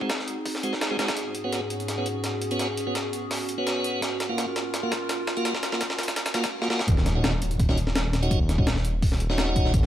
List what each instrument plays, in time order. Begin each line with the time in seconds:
Already playing: ambient pad C4 D#4 F#4 G#4
0.01 tonewheel organ G#3 C4 F#4, kick
0.10 snare, closed hi-hat
0.19 snare
0.28 closed hi-hat
0.46 kick, open hi-hat
0.55 snare
0.63 tonewheel organ G#3 C4 F#4, closed hi-hat
0.73 snare
0.81 snare, closed hi-hat
0.91 tonewheel organ G#3 C4 F#4
0.99 tonewheel organ G#3 C4 F#4, snare, closed hi-hat
1.08 snare, closed hi-hat
1.17 ambient pad G#2 B3 C#4 F#4 G#4, snare, closed hi-hat
1.35 closed hi-hat
1.44 tonewheel organ B3 C#4 F#4
1.52 snare, closed hi-hat
1.70 closed hi-hat
1.80 closed hi-hat
1.88 snare, closed hi-hat
1.98 tonewheel organ B3 C#4 F#4
2.06 closed hi-hat
2.24 snare, closed hi-hat
2.42 closed hi-hat
2.51 tonewheel organ B3 C#4 F#4, closed hi-hat
2.59 snare, closed hi-hat
2.77 closed hi-hat
2.87 tonewheel organ B3 C#4 F#4
2.95 snare, closed hi-hat
3.13 closed hi-hat
3.31 snare, open hi-hat
3.49 closed hi-hat
3.58 tonewheel organ B3 C#4 F#4
3.67 snare, closed hi-hat
3.84 closed hi-hat
4.02 ambient pad F4 A#4, snare, closed hi-hat
4.20 snare, closed hi-hat
4.29 tonewheel organ A#3 F4 F#4
4.38 snare, closed hi-hat
4.56 snare, closed hi-hat
4.74 snare, closed hi-hat
4.83 tonewheel organ A#3 F4 F#4
4.92 snare, closed hi-hat
5.09 snare, closed hi-hat
5.27 snare, closed hi-hat
5.37 tonewheel organ A#3 F4 F#4, closed hi-hat
5.45 snare, closed hi-hat
5.55 snare
5.63 snare, closed hi-hat
5.72 tonewheel organ A#3 F4 F#4, snare
5.81 snare, closed hi-hat
5.90 snare
5.99 snare, closed hi-hat
6.03 closed hi-hat
6.08 snare, closed hi-hat
6.16 snare, closed hi-hat
6.26 snare, closed hi-hat
6.34 tonewheel organ A#3 F4 F#4, snare, closed hi-hat
6.44 snare, closed hi-hat
6.62 tonewheel organ A#3 F4 F#4, snare
6.70 tonewheel organ A#3 F4 F#4, snare
6.79 snare
6.88 detuned saw bass D#1, kick, closed hi-hat, impact
6.97 snare
7.06 snare, closed hi-hat
7.15 tonewheel organ C#4 D#4 F#4
7.24 snare, closed hi-hat
7.42 closed hi-hat
7.51 closed hi-hat
7.60 kick, closed hi-hat
7.69 tonewheel organ C#4 D#4 F#4, snare
7.78 closed hi-hat
7.87 snare
7.96 snare, closed hi-hat
8.13 snare, closed hi-hat
8.23 tonewheel organ C#4 D#4 F#4, closed hi-hat
8.31 detuned saw bass D#1, kick, closed hi-hat
8.49 snare, closed hi-hat
8.58 tonewheel organ C#4 D#4 F#4, kick
8.67 snare, closed hi-hat
8.76 snare
8.85 closed hi-hat
9.02 kick, open hi-hat
9.12 snare
9.20 closed hi-hat
9.30 tonewheel organ C#4 D#4 F#4, snare
9.38 snare, closed hi-hat
9.56 kick, closed hi-hat
9.65 snare
9.74 detuned saw bass G#1, kick, closed hi-hat